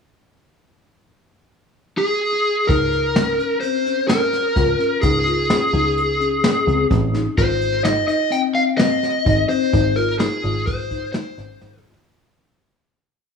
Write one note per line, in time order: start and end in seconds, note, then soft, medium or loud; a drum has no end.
1.98 2.71 G#4 medium
2.67 3.40 C#2 medium
2.67 3.00 D#4 medium
2.67 3.60 A#4 medium
2.67 kick loud
2.67 closed hi-hat medium
2.92 closed hi-hat medium
3.16 3.31 C#4 medium
3.16 snare medium
3.16 closed hi-hat medium
3.39 3.55 C#4 medium
3.39 closed hi-hat medium
3.60 3.78 C4 medium
3.60 4.08 C5 medium
3.60 closed hi-hat medium
3.86 4.02 C#4 medium
3.86 closed hi-hat soft
4.08 4.41 C#4 medium
4.08 4.99 A#4 medium
4.08 snare medium
4.08 closed hi-hat medium
4.33 snare soft
4.33 closed hi-hat medium
4.56 4.74 C#2 medium
4.56 4.72 F4 medium
4.56 kick medium
4.56 snare soft
4.56 closed hi-hat medium
4.79 4.95 C#4 medium
4.79 closed hi-hat medium
5.02 5.57 C#2 medium
5.02 5.19 D#4 medium
5.02 6.86 G#4 medium
5.02 kick medium
5.02 closed hi-hat medium
5.26 5.42 F4 medium
5.26 closed hi-hat medium
5.50 5.66 C#4 medium
5.50 snare medium
5.50 closed hi-hat medium
5.73 6.45 C#2 medium
5.73 6.05 D#4 medium
5.73 closed hi-hat medium
5.97 closed hi-hat medium
6.21 6.36 C#4 medium
6.21 closed hi-hat soft
6.44 6.59 C#4 medium
6.44 snare medium
6.44 closed hi-hat medium
6.67 6.85 C#2 medium
6.67 6.83 C4 medium
6.67 closed hi-hat soft
6.90 7.26 A1 medium
6.90 7.06 C#4 medium
6.90 kick medium
6.90 closed hi-hat medium
7.14 7.30 D#4 medium
7.14 snare soft
7.14 closed hi-hat medium
7.37 8.09 G#1 medium
7.37 7.69 F4 medium
7.37 7.84 C5 medium
7.37 kick medium
7.37 closed hi-hat medium
7.61 closed hi-hat medium
7.83 8.00 D#4 medium
7.83 8.07 D#5 medium
7.83 snare medium
7.83 closed hi-hat medium
8.07 8.23 D#4 medium
8.07 8.32 D#5 medium
8.07 closed hi-hat medium
8.30 8.47 C4 medium
8.30 8.38 G5 medium
8.30 closed hi-hat medium
8.54 8.70 C4 medium
8.54 8.61 F5 medium
8.54 closed hi-hat soft
8.78 9.10 C4 medium
8.78 9.45 D#5 medium
8.78 snare medium
8.78 closed hi-hat medium
9.03 snare soft
9.03 closed hi-hat medium
9.25 9.44 G#1 medium
9.25 9.41 D#4 medium
9.25 kick loud
9.25 closed hi-hat medium
9.49 9.65 C4 medium
9.49 9.98 C5 medium
9.49 closed hi-hat soft
9.73 10.27 G#1 medium
9.73 9.89 D#4 medium
9.73 kick medium
9.73 closed hi-hat medium
9.96 10.13 F4 medium
9.96 10.19 A#4 medium
9.96 closed hi-hat soft
10.19 10.36 D#4 medium
10.19 10.64 G#4 medium
10.19 snare medium
10.19 closed hi-hat medium
10.43 11.16 G#1 medium
10.43 10.75 F4 medium
10.43 closed hi-hat medium
10.66 11.11 C5 medium
10.66 kick loud
10.66 closed hi-hat medium
10.91 11.07 D#4 medium
10.91 kick medium
10.91 closed hi-hat soft
11.13 11.30 D#4 medium
11.13 11.81 C5 medium
11.13 snare medium
11.13 closed hi-hat medium
11.38 11.56 G#1 medium
11.38 11.54 C#4 medium
11.38 snare soft
11.38 closed hi-hat medium
11.61 11.98 G#1 medium
11.61 snare medium
11.78 mid tom medium
11.86 12.02 F4 medium
11.94 floor tom medium